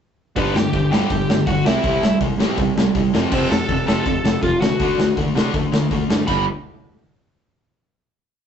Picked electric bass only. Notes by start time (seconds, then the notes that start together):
0.36 G1
0.54 G1
0.73 G1
0.91 G1
1.10 G1
1.28 G1
1.47 G1
1.65 C2
1.84 C2
2.01 C2
2.21 C2
2.38 A2
2.58 C2
2.75 C2
2.95 C2
3.13 F1
3.32 F1
3.50 F1
3.69 F1
3.87 F1
4.06 F1
4.24 F1
4.43 F1
4.61 D2
4.80 D2
4.98 D2
5.17 D2
5.35 C3
5.54 D2
5.72 D2
5.91 D2
6.09 G2
6.28 G1